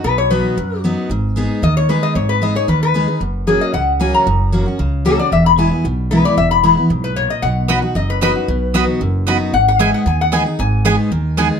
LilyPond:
<<
  \new Staff \with { instrumentName = "Resonator guitar played with a steel bar" } { \time 4/4 \key b \major \tempo 4 = 228 b'8 cis''8 b'2 r4 | r2 dis''8 cis''8 b'8 dis''8 | cis''8 b'8 dis''8 cis''8 b'8 b'4. | r4 gis'8 dis''8 fis''4 gis''8 ais''8~ |
ais''2~ ais''8 r8 a'8 d''8 | e''8 b''8 gis''4 r4 b'8 d''8 | e''8 b''8 b''4 r8 b'8 cis''8 dis''8 | fis''2 dis''8 b'8 b'4~ |
b'2 r2 | fis''8 fis''8 e''8 fis''8 gis''8 fis''4. | gis''2. r4 | }
  \new Staff \with { instrumentName = "Mandolin" } { \time 4/4 \key b \major r1 | r1 | r1 | r1 |
r1 | r1 | r1 | r4 <b fis' dis'' b''>8 r4. <b fis' dis'' b''>8 r8 |
r4 <b fis' dis'' b''>8 r4. <b fis' dis'' b''>8 r8 | r4 <b gis' dis'' gis''>8 r4. <b gis' dis'' gis''>8 r8 | r4 <b gis' dis'' gis''>8 r4. <b gis' dis'' gis''>8 r8 | }
  \new Staff \with { instrumentName = "Steel-string acoustic guitar" } { \time 4/4 \key b \major << { r4 <fis b dis' fis'>4 r4 <fis b dis' fis'>4 | r4 <gis b dis' gis'>4 r4 <gis b dis' gis'>4 | r4 <gis b dis' gis'>8 <dis' gis'>8 r4 <gis b dis' gis'>8 <dis' gis'>8 | r4 <fis ais cis' fis'>4 r4 <fis ais cis' fis'>4 |
r4 <fis ais cis' fis'>8 <cis' fis'>8 r4 <fis ais cis' fis'>8 <cis' fis'>8 | r4 <e gis b e'>8 <b e'>8 r4 <e gis b e'>4 | r4 <e gis b e'>8 <b e'>8 r2 | r4 <fis b dis' fis'>8 <dis' fis'>8 r4 <fis b dis' fis'>8 <dis' fis'>8 |
r4 <fis b dis' fis'>4 r4 <fis b dis' fis'>4 | r4 <gis b dis' gis'>4 r4 <gis b dis' gis'>8 <dis' gis'>8 | r4 <gis b dis' gis'>4 r4 <gis b dis' gis'>4 | } \\ { b,2 fis,2 | gis,2 dis2 | gis,2 dis2 | fis,2 cis2 |
fis,2 cis2 | e,2 b,2 | e,2 gis,4 ais,4 | b,2 fis,2 |
b,2 fis,2 | gis,2 dis2 | gis,2 dis2 | } >> }
  \new Staff \with { instrumentName = "Upright bass" } { \clef bass \time 4/4 \key b \major b,,2 fis,2 | gis,,2 dis,2 | gis,,2 dis,2 | fis,,2 cis,2 |
fis,,2 cis,2 | e,,2 b,,2 | e,,2 b,,2 | b,,2 fis,,2 |
b,,2 fis,,2 | gis,,2 dis,2 | gis,,2 dis,2 | }
>>